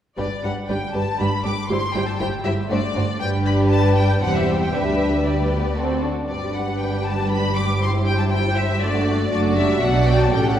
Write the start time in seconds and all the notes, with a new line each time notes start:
0.17 G1 G2 G3 D4 G4 B4 D5
0.43 G1 G2 G3 D4 G4 B4 F#5
0.68 G1 G2 G3 D4 G4 B4 G5
0.93 G1 G2 G3 D4 G4 B4 A5
1.19 G1 G2 G3 D4 G4 B4 B5
1.44 G1 G2 G3 D4 G4 B4 D6
1.69 G1 G2 G3 E4 G4 C5 C6
1.94 G1 G2 G3 E4 G4 C5 G5
2.07 A5
2.19 G1 G2 G3 E4 G4 C5 G5
2.44 G1 G2 G3 E4 G4 C5 E5
2.69 G1 G2 A3 D4 F#4 C5 D5
2.95 G1 G2 A3 D4 F#4 C5
3.19 G1 G2 G3 D4 G4 B4 G5
3.46 B5
3.70 A5
3.96 G5
4.21 E1 E2 G3 C4 G4 C5 F#5
4.35 E5
4.61 G5
4.73 D2 G3 D4 G4 B4 E5
5.24 G3 G4 B4 D5
5.51 B3
5.75 C4 F#4 A4
6.03 D4
6.27 G1 G2 G3 D4 G4 B4 D5
6.54 F#5
6.79 G5
7.06 A5
7.31 B5
7.56 D6
7.80 E4 C5 C6
8.05 G5
8.18 A5
8.30 G5
8.56 E5
8.81 A3 D4 F#4 D5
9.31 F#1 F#2 A3 D4 F#4 D5
9.56 G3 E5
9.81 B1 B2 F#3 D4 F#4 D5 F#5
10.07 G5
10.20 A5
10.32 A1 A2 A3 C#4 G4 A4 G5
10.46 F#5